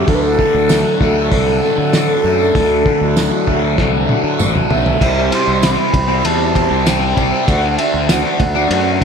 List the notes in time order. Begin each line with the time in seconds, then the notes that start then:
Already playing: F#3 A3 D4 A4 F#5
0.08 D2 D3 A4, kick, open hi-hat
0.15 B4
0.23 A4
0.39 D3, kick
0.54 D2
0.69 F#3, snare, open hi-hat, tambourine
1.00 D2 A3 A4, kick, snare
1.31 C2 D3, kick, open hi-hat
1.63 F#3
1.78 D3
1.93 D3, snare, open hi-hat, tambourine
2.24 F#2 A3
2.55 D2 D3, kick, open hi-hat
2.86 D3, kick
3.01 D2
3.17 F#3, snare, open hi-hat, tambourine
3.47 D2 A3, kick
3.78 C2 D3, kick, snare
4.09 F#3, high tom
4.24 D3
4.39 A1 D3, mid tom, tambourine
4.55 mid tom
4.70 B1 A3 E5, floor tom
4.86 floor tom
5.00 C2 C3 G3 C4 E4 G4 C5, kick, crash
5.31 C3 G3 C4 C6, ride
5.47 C2
5.61 C3 G3 C4 B5, snare, ride, tambourine
5.72 C6
5.76 G3 C4 B5
5.93 C2, muted distorted electric guitar stroke, kick, ride
6.07 G3 C4
6.25 E2 A5, ride
6.54 C3 G3 C4, kick, ride
6.69 C2 G3 C4
6.85 C3 G3 C4 G5, snare, ride, tambourine
7.00 G3 C4
7.16 C2 C3 G3 C4, kick, ride
7.32 G3 C4
7.47 D2 D3 A3 D4 F#4 A4 F#5, kick, ride
7.78 D3 A3 D4 E5, ride
7.94 D2
8.08 D3 A3 D4 F#5, snare, ride, tambourine
8.23 A3 D4, snare
8.40 D2, muted distorted electric guitar stroke, kick, snare, ride
8.55 A3 D4
8.70 F#2, ride